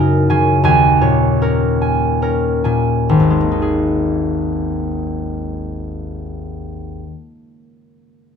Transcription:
Already playing: F#2 C#3 C#4 D#4 A#4 C#5 D#5 G#5
0.30 C#3 G#5
0.64 D#2 G#5
1.01 A#2 C#5
1.42 C#4 A#4
1.82 G#5
2.22 C#4 A#4
2.64 A#2 G#5
3.09 G#1
3.20 D#2
3.30 G#3
3.41 A#3
3.51 D#4
3.62 G#4

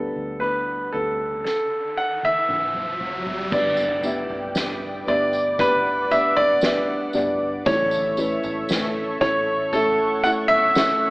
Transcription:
Already playing: D2 D3 G3 B3 D4 G4 A4 B4, riser
0.16 D2
0.40 D3 G3 B3 D4 G4 B4
0.92 D2 G3 B3 D4 G4 A4 B4
1.44 A4, snare
1.97 F#5
2.23 E5, high tom
2.49 mid tom
2.74 mid tom
3.01 floor tom
3.26 floor tom
3.51 G1 G2 D3 G3 B3 D4 G4 B4 D5 G5 D6, kick, floor tom, crash, tambourine, impact
3.77 tambourine
4.03 B3 D4 G4 B4 E5, tambourine
4.30 G1, floor tom
4.55 G3 B3 D4 G4 B4 D5, snare, tambourine
5.07 G1 B3 D4 G4 B4 D5 E5
5.33 tambourine
5.58 B3 D4 G4 B4 D5 F#5, kick, floor tom, tambourine
6.11 B3 D4 G4 B4 D5 E5, tambourine
6.37 D5, floor tom
6.61 G3 B3 D4 G4 B4 E5, snare, tambourine
7.13 G1 B3 D4 G4 B4 D5, floor tom, tambourine
7.65 A1 A2 E3 A3 C#4 E4 A4 C#5 E5 C#6, kick, floor tom, tambourine
7.91 tambourine
8.17 A3 C#4 E4 A4 B4, tambourine
8.43 A1, floor tom, tambourine
8.68 A3 C#4 E4 A4 B4, snare, tambourine
9.20 A1 A3 C#4 E4 A4 C#5, kick
9.73 A3 C#4 E4 A4 E5 F#5, floor tom, tambourine
10.24 A3 C#4 E4 A4 E5 F#5, tambourine
10.48 E5, floor tom
10.75 A3 C#4 E4 A4 E5, snare, tambourine

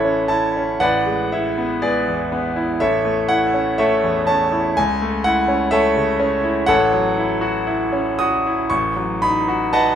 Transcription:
Already playing: A1 E3 C#4 E4 A4 C#5 E5 F#5
0.05 C#4
0.28 E4 A5
0.57 C#4
0.80 A1 B4 D5 F#5
1.06 G#3
1.32 E4 E5
1.58 B3
1.82 G#3 G#4 B4 D5
2.08 E2
2.32 B3
2.56 E4
2.80 A1 A4 C#5 E5
3.05 A3
3.29 E4 F#5
3.54 C#4
3.78 A3 A4 C#5 E5
4.04 E2
4.27 C#4 A5
4.52 E4
4.77 C#2 G#5
5.02 A3
5.24 E4 F#5
5.48 C#4
5.71 A3 A4 C#5 E5
5.96 C#3
6.20 C#4
6.44 E4
6.66 A1 A4 C#5 F#5
6.93 F#3
7.18 E4
7.41 F#4
7.67 E4
7.93 C#4
8.19 F#4 D#6
8.47 E4
8.70 A1 C#6
8.96 F#3
9.22 D#4 B5
9.48 F#4
9.73 B4 D#5 F#5 A5

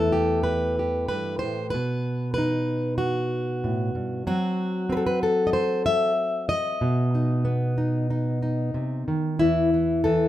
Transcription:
Already playing: E2 E3 A3 E4 A4
0.12 G4
0.43 B4
0.79 G4
1.08 G2 B4
1.39 A2 C5
1.70 B2 B4
2.34 B4
2.38 D#4
2.98 F#4
3.64 A2
3.95 G2
4.27 F#3 C4 F#4
4.89 C4 B4
4.97 A4
5.07 B4
5.23 A4
5.47 D#5
5.53 C5
5.86 E5
6.49 D#5
6.81 B2
7.15 D#4
7.45 B3
7.78 D#4
8.10 D#4
8.42 D#4
8.74 C3
9.08 D#3
9.39 E2 E3 E4
9.74 E3
10.04 E3 A4

